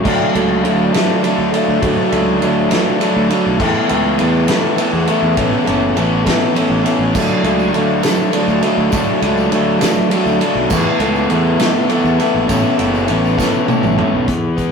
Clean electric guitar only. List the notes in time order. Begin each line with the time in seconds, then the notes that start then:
0.04 F#3 A3 D4 E4
0.34 F#3 A3 D4 E4
0.64 F#3 A3 D4 E4
0.93 F#3 A3 D4 E4
1.23 F#3 A3 D4 E4
1.53 F#3 A3 D4 E4
1.82 F#3 A3 D4 E4
2.12 F#3 A3 D4 E4
2.42 F#3 A3 D4 E4
2.71 F#3 A3 D4 E4
3.00 F#3 A3 D4 E4
3.30 F#3 A3 D4 E4
3.59 E3 A3 B3 E4
3.89 E3 A3 B3 E4
4.18 E3 A3 B3 E4
4.48 E3 A3 B3 E4
4.77 E3 A3 B3 E4
5.06 E3 A3 B3 E4
5.37 E3 B3 C#4 E4
5.66 E3 B3 C#4 E4
5.96 E3 B3 C#4 E4
6.25 E3 B3 C#4 E4
6.55 E3 B3 C#4 E4
6.83 E3 B3 C#4 E4
7.14 F#3 A3 D4 E4
7.44 F#3 A3 D4 E4
7.73 F#3 A3 D4 E4
8.03 F#3 A3 D4 E4
8.33 F#3 A3 D4 E4
8.62 F#3 A3 D4 E4
8.92 F#3 A3 D4 E4
9.22 F#3 A3 D4 E4
9.53 F#3 A3 D4 E4
9.82 F#3 A3 D4 E4
10.12 F#3 A3 D4 E4
10.41 F#3 A3 D4 E4
10.71 E3 A3 B3 E4
11.00 E3 A3 B3 E4
11.30 E3 A3 B3 E4
11.59 E3 A3 B3 E4
11.89 E3 A3 B3 E4
12.19 E3 A3 B3 E4
12.49 E3 B3 C#4 E4
12.78 E3 B3 C#4 E4
13.07 E3 B3 C#4 E4
13.37 E3 B3 C#4 E4
13.68 E3 B3 C#4 E4
13.98 E3 B3 C#4 E4